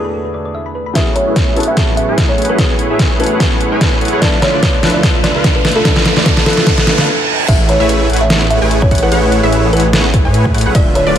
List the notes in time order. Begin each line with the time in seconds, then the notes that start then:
Already playing: E2 D3 A3 B3 D4 E4 F#4 G#4
0.05 B4
0.14 A4
0.25 B4
0.34 D5
0.45 D5
0.55 E5
0.66 B5
0.75 B4
0.86 B5
0.93 A2 E3 F#3 A3 B3 C#4 E4 G#4 B4 C#5 E5 F#5, kick, snare, closed hi-hat, riser
1.16 C#5, closed hi-hat
1.27 A3 E4 G#4 B4 C#5 E5
1.36 kick, snare, closed hi-hat
1.55 F#3 A3 B3 C#4 E4 G#4 A4 B4 C#5 F#5, closed hi-hat
1.60 closed hi-hat
1.63 closed hi-hat
1.68 E5
1.77 kick, snare, closed hi-hat
1.97 E5, closed hi-hat
2.09 A3 E4 G#4 B4 C#5 G#5
2.18 kick, snare, closed hi-hat
2.29 C#5
2.38 A3 E4 G#4 B4 C#5 F#5, closed hi-hat
2.42 closed hi-hat
2.45 closed hi-hat
2.49 A3 E4 G#4 B4 C#5 F#5
2.56 F#3 A3 B3 C#4 E4 G#4 B4 C#5 F#5, kick, snare, closed hi-hat
2.60 G#4
2.79 closed hi-hat
2.90 A3 E4 G#4 B4 C#5 E5
2.99 kick, snare, closed hi-hat
3.19 F#3 A3 B3 C#4 E4 G#4 A4 B4 C#5 F#5, closed hi-hat
3.24 closed hi-hat
3.26 closed hi-hat
3.40 kick, snare, closed hi-hat
3.61 closed hi-hat
3.72 A3 E4 G#4 B4 C#5 G#5
3.81 kick, snare, closed hi-hat
4.01 A3 E4 G#4 B4 C#5 F#5, closed hi-hat
4.05 closed hi-hat
4.08 closed hi-hat
4.13 A3 E4 G#4 B4 C#5 F#5
4.20 D2 B2 D3 F3 A3 B3 D4 E4 F4 B4 D5 E5, kick, snare, closed hi-hat
4.24 A4
4.42 C#5, snare, closed hi-hat
4.53 D3 A3 F4 B4 D5
4.63 kick, snare, closed hi-hat
4.82 D3 F3 A3 B3 D4 E4 F4 B4 E5, snare, closed hi-hat
4.87 closed hi-hat
4.90 closed hi-hat
4.94 D5
5.03 kick, snare, closed hi-hat
5.24 D5, snare, closed hi-hat
5.35 D3 A3 F4 B4 F5
5.44 kick, snare, closed hi-hat
5.56 B4
5.65 D3 A3 F4 B4 E5, snare, closed hi-hat
5.68 closed hi-hat
5.72 closed hi-hat
5.76 D3 A3 F4 A4 B4 E5
5.83 D3 F3 A3 B3 D4 E4 F4 A4 B4 E5, kick, snare, closed hi-hat
5.96 snare
6.06 snare, closed hi-hat
6.17 D3 A3 F4 B4 D5, snare
6.26 kick, snare, closed hi-hat
6.37 snare
6.45 D3 F3 A3 B3 D4 E4 F4 A4 B4 E5, snare, closed hi-hat
6.50 closed hi-hat
6.53 closed hi-hat
6.57 snare
6.67 kick, snare, closed hi-hat, reverse cymbal
6.78 snare
6.87 D3 A3 F4 B4 F5, snare, closed hi-hat
6.98 snare
7.48 A1 A3 E4 G#4 B4 C#5 E5 F#5, kick, closed hi-hat, crash
7.69 C#5, closed hi-hat
7.80 A1 A3 E4 G#4 B4 C#5 E5
7.89 closed hi-hat
8.10 A1 A3 E4 G#4 B4 C#5 F#5, closed hi-hat
8.13 closed hi-hat
8.16 closed hi-hat
8.21 E5
8.30 snare, closed hi-hat
8.50 E5, closed hi-hat
8.62 A1 A3 E4 G#4 B4 C#5 G#5
8.71 closed hi-hat
8.82 C#5, kick
8.91 A1 A3 E4 G#4 B4 C#5 F#5, kick, closed hi-hat
8.95 closed hi-hat
8.98 closed hi-hat
9.02 A1 A3 E4 G#4 B4 C#5 F#5
9.12 A1 A3 E4 G#4 B4 C#5 F#5, closed hi-hat, crash
9.32 closed hi-hat
9.43 A1 A3 E4 G#4 B4 C#5 E5
9.53 closed hi-hat
9.73 A1 A3 E4 G#4 B4 C#5 F#5, closed hi-hat
9.77 closed hi-hat
9.80 closed hi-hat
9.93 snare, closed hi-hat
10.14 kick, closed hi-hat
10.25 A2 A3 E4 G#4 B4 C#5 G#5
10.34 closed hi-hat
10.45 kick
10.54 A2 A3 E4 G#4 B4 C#5 F#5, closed hi-hat
10.58 closed hi-hat
10.61 closed hi-hat
10.66 A1 A3 E4 G#4 B4 C#5 F#5
10.75 D1 D3 A3 F4 B4 D5 E5, kick, closed hi-hat, crash
10.95 C#5, closed hi-hat
11.07 D1 D3 A3 F4 B4 D5